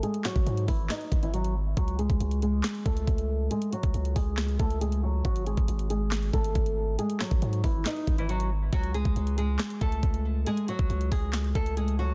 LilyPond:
<<
  \new Staff \with { instrumentName = "Nylon-string guitar" } { \time 4/4 \key cis \minor \tempo 4 = 138 <gis gis'>8 <fis fis'>4 <e e'>8 <dis' dis''>8. <e e'>16 <fis fis'>8 r8 | <fis fis'>8 <gis gis'>4 <gis gis'>4 <a a'>4. | <gis gis'>8 <fis fis'>4 <gis gis'>4 <a a'>8 <gis gis'>8 <fis fis'>8 | <fis fis'>8 <gis gis'>4 <gis gis'>4 <a a'>4. |
<gis gis'>8 <fis fis'>4 <e e'>8 <dis' dis''>8. <e e'>16 <fis fis'>8 r8 | <fis fis'>8 <gis gis'>4 <gis gis'>4 <a a'>4. | <gis gis'>8 <fis fis'>4 <gis gis'>4 <a a'>8 <gis gis'>8 <fis fis'>8 | }
  \new Staff \with { instrumentName = "808-style bass" } { \clef bass \time 4/4 \key cis \minor r8. gis,,16 gis,8 gis,,8 r8 gis,,4. | cis,8. cis,16 cis,4 r8 cis,8 cis,4 | r8. cis,16 cis,8 cis,4 cis,4. | gis,,8. gis,,16 gis,,4. gis,,8 gis,,4 |
r8. gis,,16 gis,8 gis,,8 r8 gis,,4. | cis,8. cis,16 cis,4 r8 cis,8 cis,4 | r8. cis,16 cis,8 cis,4 cis,4. | }
  \new DrumStaff \with { instrumentName = "Drums" } \drummode { \time 4/4 hh16 hh16 <hc hh sn>16 <hh bd>16 hh16 hh16 <hho bd>8 <hc hh sn>16 hh16 <hh bd>16 hh16 hh16 hh8. | <hh bd>16 hh16 hh16 <hh bd>16 hh16 hh16 hh8 <hc hh sn>16 hh16 <hh bd>16 hh16 <hh bd>16 hh8. | hh16 hh16 hh16 <hh bd>16 hh16 hh16 <hho bd>8 <hc hh sn>16 hh16 <hh bd>16 hh16 hh16 hh8. | <hh bd>16 hh16 hh16 <hh bd>16 hh16 hh16 hh8 <hc hh sn>16 hh16 <hh bd>16 hh16 <hh bd>16 hh8. |
hh16 hh16 <hc hh sn>16 <hh bd>16 hh16 hh16 <hho bd>8 <hc hh sn>16 hh16 <hh bd>16 hh16 hh16 hh8. | <hh bd>16 hh16 hh16 <hh bd>16 hh16 hh16 hh8 <hc hh sn>16 hh16 <hh bd>16 hh16 <hh bd>16 hh8. | hh16 hh16 hh16 <hh bd>16 hh16 hh16 <hho bd>8 <hc hh sn>16 hh16 <hh bd>16 hh16 hh16 hh8. | }
>>